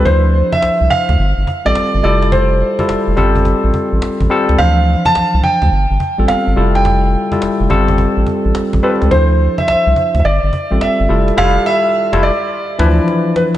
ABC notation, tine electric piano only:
X:1
M:4/4
L:1/16
Q:"Swing 16ths" 1/4=106
K:Dm
V:1 name="Tine electric piano"
[F,DEc]6- [F,DEc] z4 [G,CFA]3 [G,EFA]2- | [G,EFA]2 z [G,EFA]3 [G,CFA]6- [G,CFA] z [G,CFA]2 | [E,F,Dc]6- [E,F,Dc] z4 [G,=B,CFA]3 [G,EFA]2- | [G,EFA]2 z [G,EFA]3 [G,CFA]6- [G,CFA] z [G,CFA]2 |
[F,DEc]6- [F,DEc] z4 [G,CFA]3 [G,EFA]2 | [G,EFA]2 z3 [G,EFA]2 z3 [E,F,DE=B]2 z4 |]